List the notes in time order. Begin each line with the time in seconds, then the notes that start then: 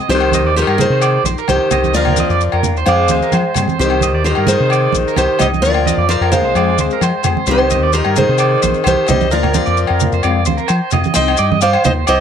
0.08 C2 C4 D#4 G4 C5, maracas
0.14 D#3
0.20 low agogo
0.32 D#4 G4 D#5, high conga, maracas
0.44 D#2 D5
0.56 G4 A#4 C5, maracas
0.61 D#3
0.67 G2 A#4, low agogo
0.77 D#4 G4 G#4 C5, low conga, maracas
0.82 D#3
0.90 C3 C5
1.01 D5, low agogo, maracas
1.23 A#1 D#4 G4 C5, high conga, maracas
1.38 A#4, maracas
1.48 C2 D#3 G4 C5, muted clean electric guitar stroke, high conga, low agogo, maracas
1.69 C2 G4 D#5, low conga, low agogo, maracas
1.73 D#4
1.84 high conga, maracas
1.92 D2 F3 A#3 D4 F4 A#4 D5, maracas
1.97 F3 A#4
2.05 low conga, low agogo
2.16 A#3 D4 D#5, muted clean electric guitar stroke, high conga, maracas
2.29 F2 D5, maracas
2.41 maracas
2.52 F2 A#4, low agogo
2.63 A#3 D4 F4, low conga, maracas
2.75 D#2 C5, maracas
2.86 F2 F3 G#3 G#4 C5 D5 F5, muted clean electric guitar stroke, low agogo, maracas
3.08 D2 C4 G#4 C5, high conga, maracas
3.13 G#3
3.22 A#4, maracas
3.32 F3 C5, high conga, low agogo, maracas
3.54 G2 C4 G#4 C5, low conga, low agogo, maracas
3.59 G#3
3.68 high conga, maracas
3.78 C2 D#3 C4 D#4 G4 C5, maracas
3.90 low agogo
4.01 D#4 G4 D#5, high conga, maracas
4.14 D#2 D5
4.24 G4 A#4 C5, maracas
4.29 D#3
4.35 G2 A#4, low agogo
4.47 G4 G#4 C5, low conga, maracas
4.51 D#3 D#4
4.60 C3 C5
4.70 D5, low agogo, maracas
4.92 A#1 G4, high conga, maracas
4.99 D#4
5.08 A#4, maracas
5.16 C2 D#3 G4 C5, high conga, low agogo, maracas
5.39 C2 G3 G4 C5 D#5, low conga, low agogo, maracas
5.45 D#4
5.54 high conga, maracas
5.62 D2 F3 A#3 D4 A#4 D5, muted clean electric guitar stroke, maracas
5.67 F4
5.74 low agogo
5.86 A#3 D4 F4 D#5, high conga, maracas
5.97 F2 D5
6.09 F3 A#4 C5 D5, maracas
6.21 F2 A#4, low agogo
6.31 G#3 A#3 D4 F4 C5 F5, low conga, maracas
6.44 C2 C5
6.55 F2 F3 G#3 C4 G#4 D5, low agogo, maracas
6.77 D2 G#3 C4 G#4 C5, high conga, maracas
6.91 A#4, maracas
7.01 F3 C5, high conga, low agogo, maracas
7.23 F2 G#3 C4 G#4 C5, low conga, low agogo, maracas
7.37 high conga
7.46 C2 G3 C4 D#4 G4 C5, maracas
7.51 D#3 C5
7.58 low agogo
7.70 C4 D#4 G4 D#5, high conga, maracas
7.82 D#2 D5
7.93 G4 A#4 C5, maracas
7.97 D#3
8.05 G2 A#4, low agogo
8.16 D#3 D#4 G4 G#4 C5, low conga, maracas
8.20 muted clean electric guitar stroke
8.28 C3 C5
8.38 D5, low agogo, maracas
8.62 A#1 C4 D#4 G4 C5, high conga, maracas
8.74 maracas
8.84 C2 D#3 G4 C5, high conga, low agogo, maracas
9.07 C2 G3 D#4 G4 C5 D#5, muted clean electric guitar stroke, low conga, low agogo, maracas
9.11 C4
9.21 high conga, maracas
9.31 D2 F3 A#3 D4 F4 A#4 D5, maracas
9.43 low conga, low agogo
9.54 F3 A#3 D4 F4 A#4 D5, high conga, maracas
9.66 F2 D5, maracas
9.77 maracas
9.87 F2 A#4, low agogo
10.00 A#3 F4, muted clean electric guitar stroke, low conga, maracas
10.12 F2 C5, maracas
10.23 F2 G#3 C4 F4 D5, low agogo, maracas
10.45 D2 F4 C5, high conga, maracas
10.50 C4
10.57 A#4, maracas
10.68 F3 C5, low agogo, maracas
10.91 F2 F4 D#5, low conga, low agogo, maracas
10.95 C4
11.04 high conga, maracas
11.14 C2 C4 C5 D#5 G5, maracas
11.18 D#4 G4
11.28 low agogo
11.37 G2 G4 D5, maracas
11.42 D#4
11.52 D#5, high conga
11.61 C5 D5 F5, maracas
11.73 C5, low agogo
11.84 D#2 G4 C5 D#5, low conga, maracas
11.89 D#4
12.07 C2 C5 D5 D#5, low agogo, maracas